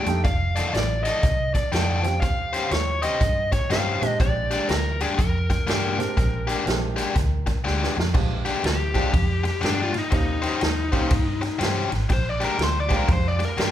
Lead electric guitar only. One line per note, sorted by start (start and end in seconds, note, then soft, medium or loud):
0.00 0.21 G5 medium
0.24 0.75 F5 medium
0.74 1.03 D5 medium
1.04 1.54 D#5 medium
1.54 1.73 D5 medium
1.72 2.20 G5 medium
2.20 2.72 F5 medium
2.72 3.03 C#5 medium
3.03 3.52 D#5 loud
3.53 3.69 C#5 medium
3.71 4.17 F5 medium
4.21 4.66 D5 medium
4.69 5.01 A#4 medium
5.02 5.07 G#4 medium
5.18 7.61 A#4 medium
8.66 9.61 G4 loud
9.65 9.80 D4 medium
9.83 9.97 F4 medium
9.99 10.13 D#4 medium
10.14 11.58 D#4 medium
12.13 12.29 C5 loud
12.29 12.44 D5 medium
12.45 12.63 A#4 medium
12.63 12.77 C5 loud
12.80 12.94 D5 loud
12.96 13.10 A#4 medium
13.13 13.28 C5 medium
13.28 13.42 D5 medium
13.45 13.59 A#4 medium
13.62 13.71 A#4 medium